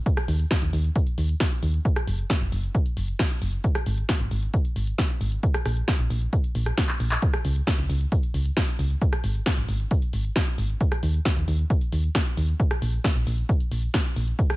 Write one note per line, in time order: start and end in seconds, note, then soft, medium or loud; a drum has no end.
0.06 kick loud
0.06 closed hi-hat medium
0.17 cross-stick medium
0.17 closed hi-hat medium
0.28 0.45 D#2 loud
0.28 open hi-hat loud
0.40 closed hi-hat medium
0.51 kick loud
0.51 snare loud
0.51 closed hi-hat medium
0.62 0.70 D#2 medium
0.62 closed hi-hat soft
0.73 0.90 D#2 loud
0.73 open hi-hat medium
0.84 closed hi-hat medium
0.96 kick loud
0.96 closed hi-hat medium
1.07 closed hi-hat medium
1.18 1.35 D#2 medium
1.18 open hi-hat loud
1.29 closed hi-hat medium
1.40 kick loud
1.40 snare loud
1.40 closed hi-hat medium
1.51 closed hi-hat soft
1.63 1.79 D#2 medium
1.63 open hi-hat loud
1.74 closed hi-hat soft
1.85 kick loud
1.85 closed hi-hat medium
1.96 cross-stick medium
1.96 closed hi-hat medium
2.07 2.24 F#1 loud
2.07 open hi-hat loud
2.19 closed hi-hat medium
2.30 kick loud
2.30 snare loud
2.30 closed hi-hat medium
2.41 2.49 F#1 medium
2.41 closed hi-hat medium
2.52 2.69 F#1 loud
2.52 open hi-hat medium
2.63 closed hi-hat medium
2.75 kick loud
2.75 closed hi-hat medium
2.86 closed hi-hat medium
2.97 3.14 F#1 medium
2.97 open hi-hat loud
3.08 closed hi-hat medium
3.19 kick loud
3.19 snare loud
3.19 closed hi-hat medium
3.31 closed hi-hat medium
3.42 3.58 F#1 medium
3.42 open hi-hat medium
3.53 closed hi-hat medium
3.64 kick loud
3.64 closed hi-hat loud
3.75 cross-stick medium
3.75 closed hi-hat medium
3.86 4.03 G#1 loud
3.86 open hi-hat loud
3.98 closed hi-hat medium
4.09 kick loud
4.09 snare loud
4.09 closed hi-hat medium
4.20 4.28 G#1 medium
4.20 closed hi-hat medium
4.31 4.48 G#1 loud
4.31 open hi-hat medium
4.42 closed hi-hat medium
4.54 kick loud
4.54 closed hi-hat loud
4.65 closed hi-hat medium
4.76 4.93 G#1 medium
4.76 open hi-hat loud
4.87 closed hi-hat medium
4.98 kick loud
4.98 snare loud
4.98 closed hi-hat medium
5.10 closed hi-hat medium
5.21 5.37 G#1 medium
5.21 open hi-hat medium
5.32 closed hi-hat medium
5.43 kick loud
5.43 closed hi-hat loud
5.54 cross-stick medium
5.54 closed hi-hat medium
5.66 5.82 A#1 loud
5.66 cross-stick medium
5.66 open hi-hat loud
5.77 closed hi-hat medium
5.88 kick loud
5.88 snare loud
5.88 closed hi-hat loud
5.99 6.08 A#1 medium
5.99 closed hi-hat medium
6.10 6.27 A#1 loud
6.10 open hi-hat medium
6.21 closed hi-hat medium
6.33 kick loud
6.33 closed hi-hat medium
6.44 closed hi-hat medium
6.55 6.72 A#1 loud
6.55 open hi-hat loud
6.66 cross-stick medium
6.66 closed hi-hat medium
6.78 kick loud
6.78 snare loud
6.78 closed hi-hat loud
6.89 clap medium
6.89 closed hi-hat medium
7.00 7.17 A#1 medium
7.00 open hi-hat medium
7.11 clap loud
7.11 closed hi-hat medium
7.22 kick loud
7.22 closed hi-hat loud
7.34 cross-stick medium
7.34 closed hi-hat medium
7.45 7.61 C#2 loud
7.45 open hi-hat loud
7.56 closed hi-hat medium
7.67 kick loud
7.67 snare loud
7.67 closed hi-hat medium
7.78 7.87 C#2 medium
7.78 closed hi-hat medium
7.89 8.06 C#2 loud
7.89 open hi-hat loud
8.01 closed hi-hat medium
8.12 kick loud
8.12 closed hi-hat loud
8.23 closed hi-hat medium
8.34 8.51 C#2 medium
8.34 open hi-hat loud
8.45 closed hi-hat medium
8.57 kick loud
8.57 snare loud
8.57 closed hi-hat medium
8.68 closed hi-hat medium
8.79 8.96 C#2 medium
8.79 open hi-hat medium
8.90 closed hi-hat medium
9.01 kick loud
9.01 closed hi-hat loud
9.13 cross-stick medium
9.13 closed hi-hat medium
9.24 9.41 G#1 loud
9.24 open hi-hat loud
9.35 closed hi-hat medium
9.46 kick loud
9.46 snare loud
9.46 closed hi-hat medium
9.57 9.66 G#1 medium
9.57 closed hi-hat medium
9.68 9.85 G#1 loud
9.68 open hi-hat loud
9.80 closed hi-hat medium
9.91 kick loud
9.91 closed hi-hat medium
10.02 closed hi-hat medium
10.13 10.30 G#1 medium
10.13 open hi-hat loud
10.25 closed hi-hat medium
10.36 kick loud
10.36 snare loud
10.36 closed hi-hat medium
10.47 closed hi-hat medium
10.58 10.75 G#1 medium
10.58 open hi-hat loud
10.69 closed hi-hat medium
10.80 kick loud
10.80 closed hi-hat loud
10.92 cross-stick medium
10.92 closed hi-hat medium
11.03 11.20 D#2 loud
11.03 open hi-hat loud
11.14 closed hi-hat medium
11.25 kick loud
11.25 snare loud
11.25 closed hi-hat medium
11.37 11.45 D#2 medium
11.37 closed hi-hat medium
11.48 11.65 D#2 loud
11.48 open hi-hat loud
11.59 closed hi-hat medium
11.70 kick loud
11.70 closed hi-hat medium
11.81 closed hi-hat medium
11.92 12.09 D#2 medium
11.92 open hi-hat loud
12.04 closed hi-hat medium
12.15 kick loud
12.15 snare loud
12.15 closed hi-hat medium
12.26 closed hi-hat medium
12.37 12.54 D#2 medium
12.37 open hi-hat loud
12.49 closed hi-hat medium
12.60 kick loud
12.60 closed hi-hat medium
12.71 cross-stick medium
12.71 closed hi-hat medium
12.82 12.99 A#1 loud
12.82 open hi-hat loud
12.93 closed hi-hat medium
13.04 kick loud
13.04 snare loud
13.04 closed hi-hat medium
13.16 13.24 A#1 medium
13.16 closed hi-hat soft
13.27 13.44 A#1 loud
13.27 open hi-hat loud
13.38 closed hi-hat soft
13.49 kick loud
13.49 closed hi-hat medium
13.60 closed hi-hat medium
13.72 13.88 A#1 medium
13.72 open hi-hat loud
13.83 closed hi-hat soft
13.94 kick loud
13.94 snare loud
13.94 closed hi-hat medium
14.05 closed hi-hat soft
14.16 14.33 A#1 medium
14.16 open hi-hat loud
14.28 closed hi-hat medium
14.39 kick loud
14.39 closed hi-hat medium
14.50 cross-stick medium
14.50 closed hi-hat medium